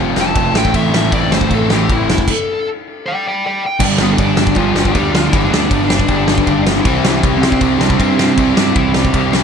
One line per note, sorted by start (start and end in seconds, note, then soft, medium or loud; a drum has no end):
0.00 0.15 F1 medium
0.00 0.54 F2 medium
0.00 0.54 C3 medium
0.00 0.16 F3 medium
0.00 0.17 F3 medium
0.00 0.55 F3 medium
0.00 0.17 A3 loud
0.00 0.18 A3 medium
0.00 0.17 C4 medium
0.00 0.17 C4 loud
0.00 0.22 C4 medium
0.00 0.16 F4 loud
0.00 0.17 F4 loud
0.15 0.34 F1 medium
0.15 0.35 F3 medium
0.15 0.36 A3 loud
0.15 0.36 C4 medium
0.15 0.37 F4 medium
0.15 snare medium
0.21 0.56 A5 loud
0.35 0.53 F1 loud
0.35 0.54 F3 loud
0.35 0.56 A3 loud
0.35 0.55 C4 loud
0.35 0.55 F4 loud
0.35 kick loud
0.35 ride medium
0.54 0.73 A1 loud
0.54 0.73 A2 loud
0.54 0.74 E3 loud
0.54 0.74 A3 loud
0.54 0.75 C4 loud
0.54 0.75 E4 loud
0.54 0.75 G5 medium
0.54 snare loud
0.65 kick medium
0.74 1.11 A1 loud
0.74 0.93 A2 medium
0.74 0.93 E3 medium
0.74 0.94 A3 medium
0.74 0.94 C4 medium
0.74 0.95 E4 loud
0.74 0.94 E5 loud
0.74 kick loud
0.74 ride medium
0.94 1.12 A2 loud
0.94 1.12 E3 medium
0.94 1.13 A3 loud
0.94 1.13 C4 loud
0.94 1.13 E4 loud
0.94 1.13 E5 loud
0.94 snare loud
1.12 1.30 A1 medium
1.12 1.31 A2 medium
1.12 1.31 E3 medium
1.12 1.32 A3 medium
1.12 1.33 C4 loud
1.12 1.32 E4 loud
1.12 1.32 D5 medium
1.12 kick loud
1.12 ride medium
1.31 1.50 G1 loud
1.31 1.50 A2 loud
1.31 1.51 E3 loud
1.31 1.51 A3 medium
1.31 1.52 C4 loud
1.31 1.51 E4 loud
1.31 1.54 C5 medium
1.31 snare loud
1.41 kick loud
1.50 1.69 A1 medium
1.50 1.69 A2 loud
1.50 1.70 E3 loud
1.50 1.70 A3 medium
1.50 1.70 C4 loud
1.50 1.71 E4 loud
1.50 kick medium
1.50 ride medium
1.54 1.71 A4 loud
1.69 1.88 A1 loud
1.69 1.88 A2 medium
1.69 1.88 E3 medium
1.69 1.89 A3 medium
1.69 1.89 C4 loud
1.69 1.90 E4 loud
1.69 1.93 G4 loud
1.69 snare loud
1.89 2.07 A1 medium
1.89 2.09 A2 medium
1.89 2.09 E3 loud
1.89 2.09 A3 loud
1.89 2.10 C4 loud
1.89 2.10 E4 loud
1.89 2.10 E4 medium
1.89 kick loud
1.89 ride medium
2.08 2.26 F1 loud
2.08 2.27 A2 medium
2.08 2.27 E3 loud
2.08 2.28 A3 loud
2.08 2.28 C4 loud
2.08 2.28 E4 medium
2.08 2.28 E4 loud
2.08 snare loud
2.18 kick medium
2.28 2.66 A4 loud
2.28 kick loud
2.28 crash loud
3.06 3.24 D5 loud
3.06 3.25 G5 loud
3.28 3.43 D5 medium
3.28 3.44 G5 loud
3.46 3.62 D5 medium
3.46 3.63 G5 medium
3.66 3.82 G5 loud
3.79 3.96 G1 loud
3.79 3.99 G2 medium
3.79 3.99 D3 loud
3.79 4.01 G3 medium
3.79 4.01 B3 loud
3.79 4.01 D4 loud
3.79 kick loud
3.79 crash loud
3.98 4.15 G1 loud
3.98 4.19 G2 loud
3.98 4.18 D3 loud
3.98 4.19 G3 loud
3.98 4.20 B3 loud
3.98 4.21 D4 loud
3.98 snare loud
4.02 4.21 B3 medium
4.02 4.18 B4 medium
4.18 4.34 G1 medium
4.18 4.36 G2 medium
4.18 4.36 D3 medium
4.18 4.37 G3 medium
4.18 4.38 B3 medium
4.18 4.55 D4 medium
4.18 4.39 D4 medium
4.18 4.54 D5 medium
4.18 kick loud
4.18 ride medium
4.36 4.54 G1 loud
4.36 4.54 G2 medium
4.36 4.55 D3 loud
4.36 4.56 G3 loud
4.36 4.56 B3 loud
4.36 4.56 D4 loud
4.36 snare loud
4.47 kick loud
4.55 4.72 G1 medium
4.55 4.73 G2 medium
4.55 4.75 D3 medium
4.55 4.93 F3 medium
4.55 4.75 G3 loud
4.55 4.75 B3 loud
4.55 4.76 D4 loud
4.55 4.95 F4 loud
4.55 kick medium
4.55 ride medium
4.75 4.91 G1 medium
4.75 4.93 G2 medium
4.75 4.94 D3 loud
4.75 4.95 G3 medium
4.75 4.94 B3 loud
4.75 4.95 D4 medium
4.75 snare loud
4.85 kick loud
4.91 5.27 D2 medium
4.91 5.13 G2 medium
4.91 5.13 D3 loud
4.91 5.12 G3 medium
4.91 5.11 G4 loud
4.91 kick loud
4.91 ride medium
4.95 5.15 G3 medium
4.95 5.15 B3 medium
4.95 5.15 D4 loud
5.11 5.32 G2 medium
5.11 5.32 D3 loud
5.11 5.32 F3 medium
5.11 5.29 F4 loud
5.11 snare loud
5.16 5.33 G3 medium
5.16 5.34 B3 loud
5.16 5.34 D4 loud
5.29 5.49 G1 medium
5.29 5.50 G2 loud
5.29 5.51 D3 medium
5.29 5.51 E3 loud
5.29 5.45 E4 loud
5.29 kick loud
5.34 5.51 G3 loud
5.34 5.51 B3 loud
5.34 5.51 D4 medium
5.34 ride medium
5.45 5.84 D4 loud
5.45 5.86 D5 medium
5.51 5.67 D2 loud
5.51 5.69 G2 medium
5.51 5.70 D3 loud
5.51 5.71 G3 loud
5.51 5.71 B3 loud
5.51 5.71 D4 loud
5.51 snare loud
5.70 6.03 G1 medium
5.70 5.89 G2 medium
5.70 5.89 D3 medium
5.70 5.90 G3 medium
5.70 5.90 B3 medium
5.70 5.91 D4 medium
5.70 kick loud
5.70 ride medium
5.85 6.60 D4 loud
5.90 6.08 G2 medium
5.90 6.08 D3 medium
5.90 6.10 G3 loud
5.90 6.09 B3 loud
5.90 6.10 D4 loud
5.90 6.62 D5 medium
5.90 snare loud
6.00 kick loud
6.08 6.40 G1 medium
6.08 6.28 G2 medium
6.08 6.29 D3 loud
6.08 6.30 G3 loud
6.08 6.30 B3 loud
6.08 6.31 D4 loud
6.08 kick medium
6.08 ride medium
6.26 6.45 G2 medium
6.26 6.47 G3 medium
6.26 snare loud
6.30 6.47 D3 medium
6.30 6.48 G3 medium
6.30 6.47 B3 medium
6.30 6.48 D4 loud
6.38 kick loud
6.47 6.79 G1 medium
6.47 6.64 G2 loud
6.47 6.65 D3 medium
6.47 6.66 G3 loud
6.47 6.65 B3 loud
6.47 6.65 D4 medium
6.47 kick loud
6.47 ride medium
6.66 6.84 G2 loud
6.66 6.84 D3 loud
6.66 6.86 G3 loud
6.66 6.84 B3 loud
6.66 6.85 D4 loud
6.66 snare loud
6.81 7.01 C2 loud
6.81 7.21 E3 medium
6.81 7.18 E4 loud
6.85 7.05 C3 medium
6.85 7.05 G3 medium
6.85 7.06 C4 loud
6.85 7.06 E4 loud
6.85 kick loud
6.85 ride medium
7.04 7.20 C2 medium
7.04 7.23 C3 medium
7.04 7.24 G3 loud
7.04 7.25 C4 loud
7.04 7.25 E4 loud
7.04 snare loud
7.23 7.39 C2 loud
7.23 7.41 C3 medium
7.23 7.41 G3 medium
7.23 7.43 C4 medium
7.23 7.42 E4 medium
7.23 kick loud
7.23 ride medium
7.37 7.58 C2 loud
7.37 7.80 C4 loud
7.42 7.59 C3 medium
7.42 7.60 G3 loud
7.42 7.61 C4 loud
7.42 7.61 E4 medium
7.42 7.78 C5 medium
7.42 snare loud
7.52 kick medium
7.60 7.78 C2 medium
7.60 7.78 C3 loud
7.60 7.79 G3 loud
7.60 7.80 C4 loud
7.60 7.79 E4 loud
7.60 kick loud
7.60 ride medium
7.78 7.96 C2 loud
7.78 7.96 C3 medium
7.78 7.97 G3 medium
7.78 7.99 C4 medium
7.78 7.99 D4 loud
7.78 7.98 E4 loud
7.78 snare loud
7.82 7.99 D5 medium
7.90 kick loud
7.97 8.32 G2 loud
7.97 8.16 C3 medium
7.97 8.16 G3 medium
7.97 8.14 C4 medium
7.97 8.18 C4 loud
7.97 8.17 E4 loud
7.97 8.18 C5 medium
7.97 kick loud
7.97 ride medium
8.15 8.36 C3 loud
8.15 8.36 G3 loud
8.15 8.53 C4 loud
8.15 8.38 C4 loud
8.15 8.37 E4 loud
8.15 8.55 C5 medium
8.19 snare loud
8.37 8.54 C2 medium
8.37 8.53 C3 loud
8.37 8.54 G3 medium
8.37 8.56 C4 loud
8.37 8.55 E4 loud
8.37 kick loud
8.37 ride medium
8.55 8.73 G2 medium
8.55 8.72 C3 loud
8.55 8.74 G3 loud
8.55 8.76 C4 loud
8.55 8.74 D4 loud
8.55 8.75 E4 loud
8.55 snare loud
8.59 8.76 D5 medium
8.74 9.08 C2 medium
8.74 8.91 C3 medium
8.74 8.95 E3 medium
8.74 8.92 G3 medium
8.74 8.94 C4 loud
8.74 8.93 E4 loud
8.74 8.94 E4 medium
8.74 kick loud
8.74 ride medium
8.92 9.10 C3 medium
8.92 9.11 G3 medium
8.92 9.31 G3 medium
8.92 9.12 C4 loud
8.92 9.12 E4 loud
8.92 9.30 G4 medium
8.92 snare loud
9.05 kick medium
9.11 9.43 C2 loud
9.11 9.28 C3 medium
9.11 9.29 G3 medium
9.11 9.31 C4 loud
9.11 9.30 E4 loud
9.11 kick loud
9.11 ride medium
9.15 9.43 C3 medium
9.15 9.43 G3 medium
9.30 9.43 C3 loud
9.30 9.43 G3 medium
9.30 9.43 C4 medium
9.30 9.43 E4 medium
9.30 snare loud
9.35 9.43 C3 medium